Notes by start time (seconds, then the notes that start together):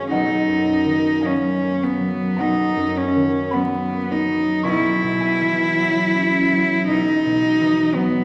Already playing: F#2 D#3 F#3 G#3 A#3 C#4 F5 G#5
0.11 B1 D#4 D#5 F#5
0.47 F#2
0.85 D#3
1.21 F#3 F5 G#5
1.26 C#4
1.62 A#3
1.83 B3
2.00 F#3
2.37 B1 D#4 F#5 A#5
2.76 F#2
2.97 C#4
3.15 D#3
3.51 F#3 B3 F#5 B5
3.89 A#3
4.12 D#4
4.26 F#3
4.63 B1 G#5 C#6
4.70 E4
5.03 B2
5.20 E5 G#5
5.41 E3
5.78 F#3
6.14 C#4
6.52 F#3
6.88 B1 D#4
7.25 B2
7.61 E3
7.94 F#3 B3